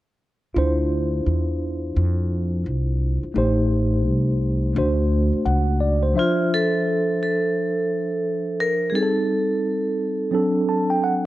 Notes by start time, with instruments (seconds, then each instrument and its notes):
0.55 upright bass D2, tine electric piano D4 E4 F4 C5
1.26 upright bass E2
1.96 upright bass F2
2.66 upright bass C2
3.23 muted upright bass stroke
3.34 upright bass A1, tine electric piano A3 D#4 G4 C5
4.06 upright bass C2
4.75 upright bass D2, tine electric piano A3 D4 F#4 C5
5.33 muted upright bass stroke
5.45 upright bass C#2, tine electric piano F#5
5.80 tine electric piano D5
6.03 tine electric piano C5
6.14 tine electric piano F3 D4 C5 E5
6.19 vibraphone F4
6.54 vibraphone A4
7.23 vibraphone A4
8.60 vibraphone A#4
8.90 tine electric piano G3 C4, vibraphone G#4
8.95 tine electric piano D#4 G#4, vibraphone A4
9.03 tine electric piano A4
10.31 tine electric piano F#3 C4 D4 A4
10.69 tine electric piano A5
10.90 tine electric piano G5
11.04 tine electric piano F#5